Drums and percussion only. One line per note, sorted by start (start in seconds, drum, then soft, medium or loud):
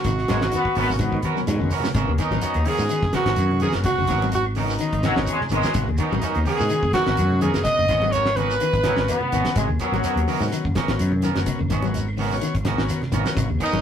0.04 kick loud
0.04 closed hi-hat medium
0.04 low conga medium
0.04 claves medium
0.04 shekere medium
0.18 snare soft
0.28 snare medium
0.28 closed hi-hat soft
0.28 claves medium
0.28 shekere medium
0.41 snare medium
0.41 high conga medium
0.41 shekere soft
0.52 closed hi-hat medium
0.52 shekere medium
0.65 kick medium
0.65 claves medium
0.75 open hi-hat medium
0.75 high conga medium
0.75 shekere soft
0.91 low conga medium
0.91 shekere medium
0.99 kick medium
0.99 closed hi-hat medium
0.99 high conga medium
0.99 claves medium
0.99 shekere medium
1.08 high conga medium
1.12 kick medium
1.17 high conga medium
1.22 kick medium
1.22 closed hi-hat medium
1.22 high conga medium
1.22 shekere soft
1.37 snare soft
1.37 shekere soft
1.41 low conga medium
1.47 snare soft
1.47 closed hi-hat medium
1.47 low conga loud
1.47 claves medium
1.47 shekere medium
1.56 low conga medium
1.64 low conga medium
1.70 open hi-hat medium
1.70 shekere medium
1.80 low conga loud
1.84 snare medium
1.84 low conga medium
1.84 shekere medium
1.94 kick loud
1.94 closed hi-hat medium
1.94 low conga loud
1.94 claves medium
1.94 shekere medium
2.18 kick medium
2.18 closed hi-hat medium
2.18 claves medium
2.18 shekere medium
2.31 snare soft
2.31 high conga loud
2.31 shekere soft
2.41 closed hi-hat medium
2.41 shekere loud
2.54 closed hi-hat soft
2.54 claves medium
2.65 open hi-hat medium
2.65 high conga medium
2.65 shekere soft
2.78 shekere medium
2.89 closed hi-hat medium
2.89 claves medium
2.89 shekere medium
3.02 kick medium
3.02 snare soft
3.13 kick medium
3.13 snare medium
3.13 closed hi-hat soft
3.13 high conga loud
3.13 shekere soft
3.26 snare medium
3.26 closed hi-hat soft
3.26 shekere soft
3.36 closed hi-hat medium
3.36 high conga medium
3.36 claves medium
3.36 shekere loud
3.51 low conga loud
3.60 closed hi-hat soft
3.60 shekere medium
3.72 snare medium
3.72 closed hi-hat soft
3.72 high conga medium
3.72 shekere medium
3.84 kick loud
3.84 closed hi-hat medium
3.84 low conga medium
3.84 claves medium
3.84 shekere medium
3.99 high conga medium
4.07 kick medium
4.07 snare soft
4.07 closed hi-hat soft
4.07 claves medium
4.07 shekere medium
4.22 high conga medium
4.22 shekere soft
4.32 closed hi-hat medium
4.32 shekere medium
4.46 claves medium
4.55 open hi-hat medium
4.55 high conga medium
4.55 shekere soft
4.68 snare soft
4.68 shekere medium
4.79 closed hi-hat medium
4.79 claves medium
4.79 shekere medium
4.93 kick medium
4.93 closed hi-hat soft
4.93 high conga medium
5.03 kick medium
5.03 snare medium
5.03 closed hi-hat medium
5.03 high conga loud
5.03 shekere soft
5.15 snare medium
5.15 shekere soft
5.26 closed hi-hat medium
5.26 high conga medium
5.26 claves medium
5.26 shekere medium
5.41 snare soft
5.41 low conga medium
5.49 closed hi-hat medium
5.49 high conga medium
5.49 shekere medium
5.63 snare medium
5.63 closed hi-hat soft
5.63 high conga medium
5.63 shekere medium
5.74 kick loud
5.74 closed hi-hat medium
5.74 low conga medium
5.74 claves medium
5.74 shekere medium
5.89 high conga medium
5.97 kick medium
5.97 closed hi-hat medium
5.97 claves medium
5.97 shekere medium
6.11 high conga loud
6.11 shekere soft
6.22 closed hi-hat medium
6.22 shekere loud
6.35 closed hi-hat soft
6.35 claves medium
6.45 open hi-hat medium
6.45 high conga medium
6.45 shekere soft
6.60 low conga medium
6.60 shekere medium
6.70 closed hi-hat medium
6.70 claves medium
6.70 shekere medium
6.83 kick medium
6.93 kick medium
6.93 snare medium
6.93 closed hi-hat medium
6.93 high conga medium
6.93 shekere soft
7.06 snare medium
7.06 closed hi-hat soft
7.06 shekere soft
7.17 closed hi-hat medium
7.17 high conga medium
7.17 claves medium
7.17 shekere loud
7.30 low conga medium
7.41 closed hi-hat medium
7.41 high conga medium
7.41 shekere medium
7.54 snare medium
7.54 closed hi-hat soft
7.54 shekere medium
7.65 kick loud
7.65 closed hi-hat medium
7.65 low conga medium
7.65 claves medium
7.65 shekere medium
7.88 kick medium
7.88 closed hi-hat soft
7.88 claves medium
7.88 shekere medium
8.02 high conga medium
8.02 shekere soft
8.13 closed hi-hat medium
8.13 shekere loud
8.26 snare medium
8.26 claves medium
8.36 closed hi-hat medium
8.36 high conga medium
8.36 shekere soft
8.50 snare soft
8.50 shekere medium
8.60 closed hi-hat medium
8.60 claves medium
8.60 shekere medium
8.73 kick medium
8.73 closed hi-hat soft
8.73 high conga medium
8.84 kick medium
8.84 snare medium
8.84 closed hi-hat medium
8.84 high conga loud
8.84 shekere soft
8.97 snare medium
8.97 shekere soft
9.08 closed hi-hat medium
9.08 high conga medium
9.08 claves medium
9.08 shekere loud
9.21 low conga medium
9.32 closed hi-hat medium
9.32 shekere loud
9.45 snare medium
9.45 closed hi-hat soft
9.45 high conga medium
9.45 shekere medium
9.56 kick loud
9.56 closed hi-hat medium
9.56 low conga medium
9.56 claves medium
9.56 shekere medium
9.70 high conga medium
9.79 kick medium
9.79 closed hi-hat medium
9.79 claves medium
9.79 shekere medium
9.93 snare soft
9.93 high conga medium
9.93 shekere soft
10.03 closed hi-hat medium
10.03 shekere loud
10.17 closed hi-hat soft
10.17 claves medium
10.27 open hi-hat medium
10.27 high conga medium
10.27 shekere soft
10.41 low conga medium
10.41 shekere medium
10.52 snare soft
10.52 closed hi-hat medium
10.52 claves medium
10.52 shekere medium
10.65 kick medium
10.65 high conga medium
10.75 kick medium
10.75 snare medium
10.75 closed hi-hat soft
10.75 high conga medium
10.75 shekere soft
10.88 snare medium
10.88 closed hi-hat soft
10.88 shekere soft
10.99 closed hi-hat medium
10.99 high conga medium
10.99 claves medium
10.99 shekere medium
11.12 low conga medium
11.22 closed hi-hat soft
11.22 shekere medium
11.35 snare medium
11.35 closed hi-hat soft
11.35 shekere medium
11.46 kick loud
11.46 closed hi-hat medium
11.46 low conga medium
11.46 claves medium
11.46 shekere medium
11.59 high conga medium
11.70 kick medium
11.70 closed hi-hat medium
11.70 claves medium
11.70 shekere medium
11.82 high conga medium
11.82 shekere soft
11.94 closed hi-hat medium
11.94 shekere loud
12.08 claves medium
12.17 open hi-hat medium
12.17 high conga medium
12.17 shekere soft
12.30 low conga medium
12.30 shekere medium
12.41 closed hi-hat medium
12.41 claves medium
12.41 shekere medium
12.54 kick medium
12.54 closed hi-hat soft
12.54 high conga medium
12.65 kick medium
12.65 snare medium
12.65 closed hi-hat medium
12.65 high conga medium
12.65 shekere soft
12.78 snare medium
12.78 shekere soft
12.89 snare soft
12.89 closed hi-hat medium
12.89 high conga medium
12.89 claves medium
12.89 shekere medium
13.02 snare soft
13.02 low conga medium
13.12 closed hi-hat medium
13.12 shekere medium
13.25 snare medium
13.25 closed hi-hat soft
13.25 high conga medium
13.25 shekere medium
13.36 kick loud
13.36 closed hi-hat medium
13.36 low conga medium
13.36 claves medium
13.36 shekere medium
13.49 high conga medium
13.60 kick medium
13.60 closed hi-hat medium
13.60 claves medium
13.60 shekere medium
13.73 high conga medium
13.73 shekere soft